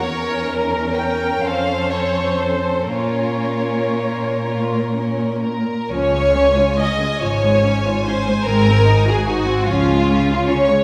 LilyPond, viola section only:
\new Staff \with { instrumentName = "Viola section" } { \time 6/8 \key bes \minor \tempo 4. = 45 << { bes'4. c''4. | des''2~ des''16 r8. | \key des \major des'2. | c'4. des'4. | } \\ { r2. | r2. | f16 aes16 des'16 f'16 des'16 aes16 f16 aes16 des'16 f'16 des'16 aes16 | aes16 c'16 ees'16 ges'16 ees'16 c'16 f16 aes16 des'16 f'16 des'16 aes16 | } >> }